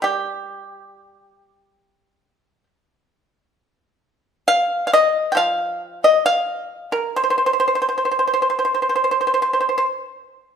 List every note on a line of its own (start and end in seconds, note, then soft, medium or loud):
0.02 2.66 G3 medium
0.02 2.63 G4 medium
4.48 4.84 F5 loud
4.87 4.93 F5 medium
4.93 5.30 D#5 medium
5.32 8.08 F3 medium
5.32 5.39 G5 medium
5.37 6.02 F5 medium
6.04 6.25 D#5 medium
6.26 6.91 F5 medium
6.92 7.15 A#4 medium
7.16 7.22 C5 medium
7.24 7.29 C5 soft
7.30 7.37 C5 soft
7.38 7.45 C5 soft
7.46 7.52 C5 medium
7.53 7.59 C5 soft
7.60 7.66 C5 soft
7.68 7.74 C5 soft
7.75 7.81 C5 soft
7.82 7.87 C5 soft
7.89 7.96 C5 soft
7.98 8.04 C5 soft
8.05 8.10 C5 soft
8.11 8.18 C5 soft
8.19 8.26 C5 soft
8.27 8.32 C5 soft
8.34 8.41 C5 soft
8.42 8.49 C5 soft
8.50 8.58 C5 soft
8.59 8.64 C5 soft
8.65 8.73 C5 soft
8.74 8.81 C5 soft
8.82 8.88 C5 soft
8.89 8.94 C5 soft
8.96 9.03 C5 soft
9.04 9.10 C5 soft
9.11 9.19 C5 soft
9.21 9.26 C5 soft
9.27 9.33 C5 soft
9.34 9.41 C5 soft
9.42 9.51 C5 soft
9.53 9.59 C5 soft
9.61 9.68 C5 soft
9.69 9.76 C5 soft
9.78 9.86 C5 soft